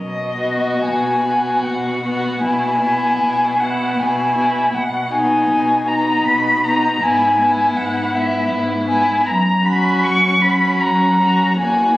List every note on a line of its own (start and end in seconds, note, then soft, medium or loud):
0.00 0.74 B2 soft
0.00 0.80 D#5 soft
0.38 1.24 B3 soft
0.38 1.24 F#4 soft
0.83 1.56 B2 soft
0.83 1.67 G#5 medium
1.25 2.02 B3 soft
1.25 2.02 F#4 soft
1.65 2.33 B2 soft
1.65 2.41 F#5 soft
2.03 2.41 B3 soft
2.03 2.42 F#4 soft
2.42 3.11 B2 soft
2.42 2.80 B3 soft
2.42 2.80 E4 soft
2.42 3.61 G#5 medium
2.80 3.57 B3 soft
2.80 3.58 E4 soft
3.21 3.89 B2 soft
3.59 4.35 B3 soft
3.59 4.35 E4 soft
3.59 4.01 F#5 medium
3.99 4.65 B2 soft
3.99 4.76 G#5 medium
4.37 4.73 B3 soft
4.37 4.73 E4 soft
4.74 5.39 B2 medium
4.74 5.13 F#5 medium
5.11 5.85 B3 soft
5.11 5.85 D#4 soft
5.11 5.89 G#5 medium
5.49 6.16 B2 medium
5.87 6.62 B3 soft
5.87 6.63 D#4 soft
5.87 6.25 A#5 medium
6.25 6.93 B2 medium
6.25 6.66 B5 medium
6.64 7.02 B3 soft
6.64 7.01 D#4 soft
6.64 7.04 A#5 medium
7.02 7.68 G#2 medium
7.02 7.39 B3 soft
7.02 7.39 E4 soft
7.02 7.77 G#5 medium
7.39 8.12 B3 soft
7.39 8.12 E4 soft
7.76 8.42 G#2 medium
7.76 8.16 F#5 medium
8.14 8.87 B3 soft
8.14 8.87 E4 soft
8.14 8.51 E5 medium
8.51 9.17 G#2 medium
8.87 9.25 B3 soft
8.87 9.25 E4 soft
8.87 9.27 G#5 medium
9.25 9.95 F#2 medium
9.25 9.66 A#5 medium
9.65 10.41 C#4 soft
9.65 10.41 F#4 soft
9.65 10.05 B5 medium
10.04 10.72 F#2 medium
10.04 10.43 C#6 medium
10.42 11.19 C#4 soft
10.42 11.19 F#4 soft
10.42 10.83 B5 medium
10.81 11.50 F#2 medium
10.81 11.59 A#5 medium
11.21 11.59 C#4 soft
11.21 11.58 F#4 soft
11.59 11.97 E2 medium
11.59 11.97 A#3 soft
11.59 11.97 F#4 soft
11.59 11.97 G#5 medium